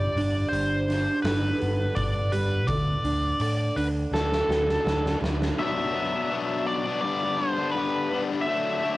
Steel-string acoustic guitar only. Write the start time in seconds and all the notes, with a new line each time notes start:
Already playing: G3 D4
0.17 D4
0.52 G3
0.88 D4
1.25 A4
1.61 B3
1.96 D4
2.32 G3
2.69 D3
3.04 D4
3.41 D3
3.77 D4
4.13 A4
4.49 F#4
4.85 D4
5.21 D3